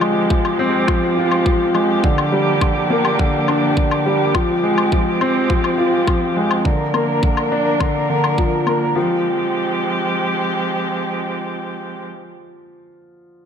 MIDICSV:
0, 0, Header, 1, 4, 480
1, 0, Start_track
1, 0, Tempo, 576923
1, 1693, Time_signature, 4, 2, 24, 8
1, 11195, End_track
2, 0, Start_track
2, 0, Title_t, "String quartet"
2, 0, Program_c, 0, 48
2, 0, Note_on_c, 0, 53, 69
2, 0, Note_on_c, 0, 56, 62
2, 0, Note_on_c, 0, 60, 62
2, 0, Note_on_c, 0, 67, 74
2, 1673, Note_off_c, 0, 60, 0
2, 1674, Note_off_c, 0, 56, 0
2, 1696, Note_on_c, 0, 62, 60
2, 1698, Note_on_c, 0, 58, 59
2, 3595, Note_off_c, 0, 62, 0
2, 3596, Note_off_c, 0, 58, 0
2, 3617, Note_on_c, 0, 56, 63
2, 3617, Note_on_c, 0, 60, 64
2, 5499, Note_off_c, 0, 67, 0
2, 5516, Note_off_c, 0, 56, 0
2, 5516, Note_off_c, 0, 60, 0
2, 5535, Note_on_c, 0, 70, 72
2, 5537, Note_on_c, 0, 58, 56
2, 5538, Note_on_c, 0, 62, 56
2, 7419, Note_off_c, 0, 53, 0
2, 7435, Note_off_c, 0, 70, 0
2, 7436, Note_off_c, 0, 58, 0
2, 7436, Note_off_c, 0, 62, 0
2, 7454, Note_on_c, 0, 56, 57
2, 7454, Note_on_c, 0, 60, 55
2, 7455, Note_on_c, 0, 67, 72
2, 7456, Note_on_c, 0, 53, 62
2, 10006, Note_off_c, 0, 56, 0
2, 10006, Note_off_c, 0, 60, 0
2, 10006, Note_off_c, 0, 67, 0
2, 10007, Note_off_c, 0, 53, 0
2, 11195, End_track
3, 0, Start_track
3, 0, Title_t, "Grand piano"
3, 0, Program_c, 1, 0
3, 0, Control_c, 1, 64, 127
3, 0, Note_on_c, 1, 53, 73
3, 14, Note_on_c, 1, 56, 67
3, 242, Note_off_c, 1, 56, 0
3, 252, Note_off_c, 1, 53, 0
3, 252, Note_on_c, 1, 53, 65
3, 480, Note_off_c, 1, 53, 0
3, 492, Note_on_c, 1, 60, 81
3, 720, Note_off_c, 1, 60, 0
3, 732, Note_on_c, 1, 53, 76
3, 960, Note_off_c, 1, 53, 0
3, 972, Note_on_c, 1, 65, 68
3, 1200, Note_off_c, 1, 65, 0
3, 1212, Note_on_c, 1, 53, 66
3, 1440, Note_off_c, 1, 53, 0
3, 1453, Note_on_c, 1, 56, 64
3, 1590, Note_off_c, 1, 56, 0
3, 1694, Note_on_c, 1, 50, 73
3, 1704, Control_c, 1, 64, 0
3, 1851, Control_c, 1, 64, 127
3, 1922, Note_off_c, 1, 50, 0
3, 1932, Note_on_c, 1, 55, 63
3, 2161, Note_off_c, 1, 55, 0
3, 2174, Note_on_c, 1, 50, 59
3, 2402, Note_off_c, 1, 50, 0
3, 2414, Note_on_c, 1, 58, 77
3, 2641, Note_off_c, 1, 58, 0
3, 2656, Note_on_c, 1, 50, 74
3, 2883, Note_off_c, 1, 50, 0
3, 2898, Note_on_c, 1, 62, 69
3, 3124, Note_off_c, 1, 62, 0
3, 3138, Note_on_c, 1, 50, 60
3, 3364, Note_off_c, 1, 50, 0
3, 3379, Note_on_c, 1, 55, 67
3, 3513, Note_off_c, 1, 55, 0
3, 3615, Note_on_c, 1, 53, 70
3, 3625, Control_c, 1, 64, 0
3, 3754, Control_c, 1, 64, 127
3, 3842, Note_off_c, 1, 53, 0
3, 3855, Note_on_c, 1, 56, 67
3, 4082, Note_off_c, 1, 56, 0
3, 4094, Note_on_c, 1, 53, 59
3, 4322, Note_off_c, 1, 53, 0
3, 4336, Note_on_c, 1, 60, 78
3, 4562, Note_off_c, 1, 60, 0
3, 4573, Note_on_c, 1, 53, 71
3, 4801, Note_off_c, 1, 53, 0
3, 4810, Note_on_c, 1, 65, 67
3, 5040, Note_off_c, 1, 65, 0
3, 5056, Note_on_c, 1, 53, 64
3, 5283, Note_off_c, 1, 53, 0
3, 5296, Note_on_c, 1, 56, 63
3, 5432, Note_off_c, 1, 56, 0
3, 5537, Note_on_c, 1, 50, 64
3, 5542, Control_c, 1, 64, 0
3, 5672, Control_c, 1, 64, 127
3, 5763, Note_off_c, 1, 50, 0
3, 5773, Note_on_c, 1, 58, 61
3, 6001, Note_off_c, 1, 58, 0
3, 6017, Note_on_c, 1, 50, 57
3, 6243, Note_off_c, 1, 50, 0
3, 6255, Note_on_c, 1, 62, 75
3, 6482, Note_off_c, 1, 62, 0
3, 6491, Note_on_c, 1, 50, 74
3, 6720, Note_off_c, 1, 50, 0
3, 6737, Note_on_c, 1, 50, 62
3, 6963, Note_off_c, 1, 50, 0
3, 6974, Note_on_c, 1, 53, 59
3, 7202, Note_off_c, 1, 53, 0
3, 7209, Note_on_c, 1, 58, 59
3, 7439, Note_off_c, 1, 58, 0
3, 7450, Note_on_c, 1, 53, 67
3, 7465, Control_c, 1, 64, 0
3, 7600, Control_c, 1, 64, 127
3, 7675, Note_off_c, 1, 53, 0
3, 11195, End_track
4, 0, Start_track
4, 0, Title_t, "Drums"
4, 11, Note_on_c, 9, 77, 61
4, 94, Note_off_c, 9, 77, 0
4, 252, Note_on_c, 9, 36, 95
4, 336, Note_off_c, 9, 36, 0
4, 373, Note_on_c, 9, 77, 51
4, 456, Note_off_c, 9, 77, 0
4, 731, Note_on_c, 9, 77, 55
4, 733, Note_on_c, 9, 36, 91
4, 815, Note_off_c, 9, 77, 0
4, 817, Note_off_c, 9, 36, 0
4, 1094, Note_on_c, 9, 77, 51
4, 1177, Note_off_c, 9, 77, 0
4, 1214, Note_on_c, 9, 36, 84
4, 1297, Note_off_c, 9, 36, 0
4, 1452, Note_on_c, 9, 77, 52
4, 1535, Note_off_c, 9, 77, 0
4, 1694, Note_on_c, 9, 36, 81
4, 1778, Note_off_c, 9, 36, 0
4, 1815, Note_on_c, 9, 77, 57
4, 1898, Note_off_c, 9, 77, 0
4, 2174, Note_on_c, 9, 77, 53
4, 2175, Note_on_c, 9, 36, 92
4, 2257, Note_off_c, 9, 77, 0
4, 2258, Note_off_c, 9, 36, 0
4, 2535, Note_on_c, 9, 77, 55
4, 2618, Note_off_c, 9, 77, 0
4, 2656, Note_on_c, 9, 36, 88
4, 2740, Note_off_c, 9, 36, 0
4, 2896, Note_on_c, 9, 77, 52
4, 2979, Note_off_c, 9, 77, 0
4, 3136, Note_on_c, 9, 36, 84
4, 3219, Note_off_c, 9, 36, 0
4, 3257, Note_on_c, 9, 77, 59
4, 3340, Note_off_c, 9, 77, 0
4, 3616, Note_on_c, 9, 36, 77
4, 3616, Note_on_c, 9, 77, 60
4, 3699, Note_off_c, 9, 36, 0
4, 3699, Note_off_c, 9, 77, 0
4, 3975, Note_on_c, 9, 77, 59
4, 4058, Note_off_c, 9, 77, 0
4, 4095, Note_on_c, 9, 36, 85
4, 4178, Note_off_c, 9, 36, 0
4, 4336, Note_on_c, 9, 77, 59
4, 4419, Note_off_c, 9, 77, 0
4, 4574, Note_on_c, 9, 36, 81
4, 4657, Note_off_c, 9, 36, 0
4, 4694, Note_on_c, 9, 77, 58
4, 4777, Note_off_c, 9, 77, 0
4, 5054, Note_on_c, 9, 36, 82
4, 5055, Note_on_c, 9, 77, 57
4, 5138, Note_off_c, 9, 36, 0
4, 5138, Note_off_c, 9, 77, 0
4, 5414, Note_on_c, 9, 77, 61
4, 5497, Note_off_c, 9, 77, 0
4, 5534, Note_on_c, 9, 36, 78
4, 5617, Note_off_c, 9, 36, 0
4, 5774, Note_on_c, 9, 77, 60
4, 5857, Note_off_c, 9, 77, 0
4, 6014, Note_on_c, 9, 36, 87
4, 6097, Note_off_c, 9, 36, 0
4, 6133, Note_on_c, 9, 77, 58
4, 6217, Note_off_c, 9, 77, 0
4, 6492, Note_on_c, 9, 77, 57
4, 6493, Note_on_c, 9, 36, 86
4, 6575, Note_off_c, 9, 77, 0
4, 6576, Note_off_c, 9, 36, 0
4, 6855, Note_on_c, 9, 77, 57
4, 6938, Note_off_c, 9, 77, 0
4, 6973, Note_on_c, 9, 36, 76
4, 7056, Note_off_c, 9, 36, 0
4, 7212, Note_on_c, 9, 77, 54
4, 7295, Note_off_c, 9, 77, 0
4, 11195, End_track
0, 0, End_of_file